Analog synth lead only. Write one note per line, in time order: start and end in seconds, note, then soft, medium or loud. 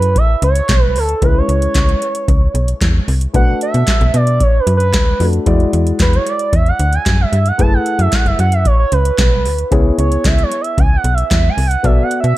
0.00 0.19 B4 loud
0.17 0.43 E5 loud
0.44 0.83 C#5 loud
0.83 0.99 B4 loud
0.98 1.26 A4 medium
1.24 1.39 B4 loud
1.38 2.69 C#5 loud
3.35 3.60 F#5 loud
3.63 4.17 E5 loud
4.16 4.44 D5 loud
4.42 4.61 C#5 loud
4.60 4.77 B4 medium
4.77 5.26 B4 medium
6.02 6.17 B4 medium
6.15 6.30 C#5 medium
6.29 6.56 D5 loud
6.55 6.70 E5 loud
6.68 6.96 F#5 loud
6.94 7.23 G#5 loud
7.21 7.49 E5 medium
7.47 7.62 F#5 loud
7.61 7.75 A5 loud
7.74 8.02 F#5 loud
8.01 8.15 E5 loud
8.14 8.28 F#5 loud
8.27 8.39 E5 loud
8.40 8.55 F#5 loud
8.53 8.68 E5 medium
8.66 8.79 C#5 medium
8.79 8.94 C#5 medium
8.92 9.72 B4 medium
9.99 10.27 C#5 medium
10.26 10.44 E5 medium
10.43 10.62 C#5 medium
10.61 10.81 E5 medium
10.79 10.98 G#5 loud
10.96 11.15 F#5 loud
11.14 11.31 E5 medium
11.31 11.51 E5 medium
11.49 11.68 G#5 loud
11.67 11.86 F#5 medium
11.85 12.04 E5 loud
12.03 12.20 F#5 medium
12.20 12.38 E5 loud